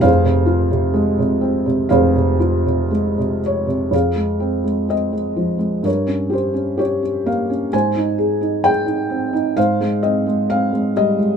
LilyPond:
<<
  \new Staff \with { instrumentName = "Felt piano" } { \time 4/4 \key f \minor \tempo 4 = 64 << { f''2 f''4. des''8 | f''4 ees''4 des''8 c''8 des''8 f''8 | aes''4 g''4 f''8 ees''8 f''8 ees''8 | } \\ { <aes' c''>2 <aes' c''>2 | aes'2 bes'2 | c''2 c''2 | } >> }
  \new Staff \with { instrumentName = "Felt piano" } { \clef bass \time 4/4 \key f \minor <f,, f,>16 c16 f'16 c16 aes16 c16 c'16 c16 <f,, f,>16 c16 f'16 c16 aes16 c8 c16 | f,16 aes16 c'16 aes16 c'16 aes16 f16 aes16 g,16 des'16 g'16 des'16 g'16 des'16 bes16 des'16 | aes,16 ees'16 aes'16 ees'16 aes'16 ees'16 c'16 ees'16 aes,16 aes16 c'16 aes16 c'16 aes16 g16 aes16 | }
>>